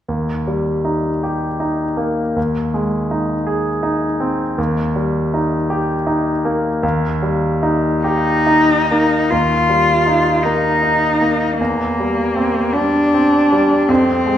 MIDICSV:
0, 0, Header, 1, 3, 480
1, 0, Start_track
1, 0, Key_signature, -3, "major"
1, 0, Tempo, 759494
1, 54, Time_signature, 6, 3, 24, 8
1, 1493, Tempo, 744417
1, 4373, Tempo, 795756
1, 4853, Tempo, 841515
1, 5813, Tempo, 760456
1, 9013, End_track
2, 0, Start_track
2, 0, Title_t, "Cello"
2, 0, Program_c, 0, 42
2, 5092, Note_on_c, 0, 63, 53
2, 5809, Note_on_c, 0, 65, 51
2, 5818, Note_off_c, 0, 63, 0
2, 6519, Note_on_c, 0, 63, 46
2, 6528, Note_off_c, 0, 65, 0
2, 7248, Note_off_c, 0, 63, 0
2, 7252, Note_on_c, 0, 58, 49
2, 7971, Note_on_c, 0, 62, 56
2, 7980, Note_off_c, 0, 58, 0
2, 8700, Note_on_c, 0, 60, 49
2, 8710, Note_off_c, 0, 62, 0
2, 9013, Note_off_c, 0, 60, 0
2, 9013, End_track
3, 0, Start_track
3, 0, Title_t, "Grand piano"
3, 0, Program_c, 1, 0
3, 54, Note_on_c, 1, 39, 29
3, 171, Control_c, 1, 64, 127
3, 300, Note_on_c, 1, 55, 23
3, 535, Note_on_c, 1, 63, 26
3, 684, Note_off_c, 1, 55, 0
3, 780, Note_on_c, 1, 67, 25
3, 917, Note_off_c, 1, 63, 0
3, 1011, Note_on_c, 1, 63, 27
3, 1158, Note_off_c, 1, 67, 0
3, 1245, Note_on_c, 1, 58, 27
3, 1397, Note_off_c, 1, 63, 0
3, 1469, Note_off_c, 1, 39, 0
3, 1490, Note_off_c, 1, 58, 0
3, 1493, Note_on_c, 1, 39, 31
3, 1507, Control_c, 1, 64, 0
3, 1600, Control_c, 1, 64, 127
3, 1737, Note_on_c, 1, 56, 23
3, 1976, Note_on_c, 1, 63, 25
3, 2116, Note_off_c, 1, 56, 0
3, 2204, Note_on_c, 1, 68, 30
3, 2353, Note_off_c, 1, 63, 0
3, 2438, Note_on_c, 1, 63, 30
3, 2587, Note_off_c, 1, 68, 0
3, 2680, Note_on_c, 1, 60, 31
3, 2823, Note_off_c, 1, 63, 0
3, 2897, Note_off_c, 1, 39, 0
3, 2920, Note_off_c, 1, 60, 0
3, 2923, Note_on_c, 1, 39, 36
3, 2933, Control_c, 1, 64, 0
3, 3032, Control_c, 1, 64, 127
3, 3167, Note_on_c, 1, 55, 27
3, 3412, Note_on_c, 1, 63, 31
3, 3550, Note_off_c, 1, 55, 0
3, 3645, Note_on_c, 1, 67, 33
3, 3791, Note_off_c, 1, 63, 0
3, 3882, Note_on_c, 1, 63, 34
3, 4028, Note_off_c, 1, 67, 0
3, 4128, Note_on_c, 1, 58, 35
3, 4273, Note_off_c, 1, 63, 0
3, 4348, Note_off_c, 1, 39, 0
3, 4373, Note_on_c, 1, 39, 43
3, 4384, Control_c, 1, 64, 0
3, 4494, Control_c, 1, 64, 127
3, 4517, Note_off_c, 1, 58, 0
3, 4612, Note_on_c, 1, 55, 30
3, 4855, Note_on_c, 1, 63, 34
3, 4995, Note_off_c, 1, 55, 0
3, 5092, Note_on_c, 1, 67, 36
3, 5232, Note_off_c, 1, 63, 0
3, 5334, Note_on_c, 1, 63, 33
3, 5480, Note_off_c, 1, 67, 0
3, 5587, Note_on_c, 1, 58, 32
3, 5727, Note_off_c, 1, 63, 0
3, 5791, Note_off_c, 1, 39, 0
3, 5818, Note_off_c, 1, 58, 0
3, 5820, Note_on_c, 1, 39, 32
3, 5826, Control_c, 1, 64, 0
3, 5941, Control_c, 1, 64, 127
3, 6058, Note_on_c, 1, 55, 23
3, 6293, Note_on_c, 1, 63, 26
3, 6438, Note_off_c, 1, 55, 0
3, 6536, Note_on_c, 1, 58, 29
3, 6676, Note_off_c, 1, 63, 0
3, 6769, Note_on_c, 1, 63, 25
3, 6917, Note_off_c, 1, 58, 0
3, 7015, Note_on_c, 1, 58, 27
3, 7157, Note_off_c, 1, 63, 0
3, 7234, Note_off_c, 1, 39, 0
3, 7257, Note_off_c, 1, 58, 0
3, 7263, Note_on_c, 1, 40, 31
3, 7265, Control_c, 1, 64, 0
3, 7377, Control_c, 1, 64, 127
3, 7512, Note_on_c, 1, 55, 27
3, 7739, Note_on_c, 1, 60, 26
3, 7889, Note_off_c, 1, 55, 0
3, 7987, Note_on_c, 1, 55, 31
3, 8125, Note_off_c, 1, 60, 0
3, 8234, Note_on_c, 1, 60, 30
3, 8374, Note_off_c, 1, 55, 0
3, 8474, Note_on_c, 1, 55, 31
3, 8617, Note_off_c, 1, 60, 0
3, 8684, Note_off_c, 1, 40, 0
3, 8704, Note_on_c, 1, 41, 37
3, 8709, Note_off_c, 1, 55, 0
3, 8718, Control_c, 1, 64, 0
3, 8820, Control_c, 1, 64, 127
3, 8939, Note_on_c, 1, 56, 26
3, 9013, Note_off_c, 1, 41, 0
3, 9013, Note_off_c, 1, 56, 0
3, 9013, End_track
0, 0, End_of_file